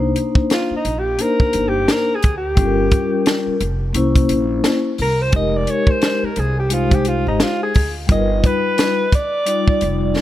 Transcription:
Already playing: C2 A#3 D4 D#4 C5
0.16 closed hi-hat
0.35 kick
0.50 F4, snare, closed hi-hat
0.71 muted upright bass stroke
0.76 D#4
0.85 A#1, closed hi-hat
0.99 G4
1.17 A#3 D4 D#4 C5, closed hi-hat
1.22 A#4
1.40 kick
1.53 G1, closed hi-hat
1.69 G4
1.88 A#4, snare, closed hi-hat
2.15 G#4
2.23 D2, kick, closed hi-hat
2.37 G4
2.55 G1 G3 C#4 F4 A4, kick, closed hi-hat
2.66 A#4
2.91 kick, closed hi-hat
3.26 snare, closed hi-hat
3.47 muted upright bass stroke
3.61 F1, closed hi-hat
3.93 C2 A#3 C#4 E4, closed hi-hat
3.97 C5
4.16 kick, closed hi-hat
4.29 A#1, closed hi-hat
4.64 snare, closed hi-hat
4.98 C2 A#4, open hi-hat
5.22 C5
5.31 F1 G#3 D#4 G4, kick, closed hi-hat
5.35 A#4 D#5
5.56 D5
5.67 C#5, closed hi-hat
5.87 C5, kick
6.02 snare, closed hi-hat
6.23 A#4, muted upright bass stroke
6.36 C2 G#4, closed hi-hat
6.60 G4
6.69 G#3 D#4 F4 G4 C5, closed hi-hat
6.91 G4, kick, closed hi-hat
7.05 F4, closed hi-hat
7.27 G#1 D#4
7.40 F4, snare, closed hi-hat
7.63 G#4
7.74 D2, kick, open hi-hat
8.07 G1 G3 D#4 F4 A#4, kick, closed hi-hat
8.12 D#5
8.18 B4
8.44 B4, kick, closed hi-hat
8.78 snare, closed hi-hat
9.12 D5, kick, closed hi-hat
9.46 G3 D#4 F4 D5, closed hi-hat
9.68 kick
9.81 F1, closed hi-hat
10.16 snare

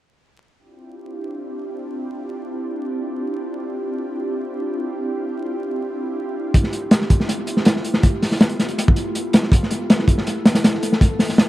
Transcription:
0.58 C4 D4 E4 F4 G4
6.54 A3 B3, kick, closed hi-hat
6.63 snare
6.73 closed hi-hat
6.91 snare, closed hi-hat
7.02 snare
7.10 kick, closed hi-hat
7.20 snare
7.29 closed hi-hat
7.47 closed hi-hat
7.57 snare
7.65 snare, closed hi-hat
7.76 snare
7.85 closed hi-hat
7.94 snare
8.03 kick, closed hi-hat
8.22 snare, open hi-hat
8.32 snare
8.41 snare, closed hi-hat
8.49 closed hi-hat
8.59 snare, closed hi-hat
8.68 closed hi-hat
8.78 closed hi-hat
8.88 kick
8.96 closed hi-hat
9.15 closed hi-hat
9.33 snare, closed hi-hat
9.43 snare
9.52 A4, kick, closed hi-hat
9.63 snare
9.71 closed hi-hat
9.90 snare, closed hi-hat
9.99 snare
10.08 kick, closed hi-hat
10.18 snare
10.27 closed hi-hat
10.45 snare, closed hi-hat
10.55 snare, closed hi-hat
10.64 snare, closed hi-hat
10.74 snare
10.83 closed hi-hat
10.92 snare
11.01 kick, closed hi-hat
11.19 snare, open hi-hat
11.29 snare
11.38 snare, closed hi-hat

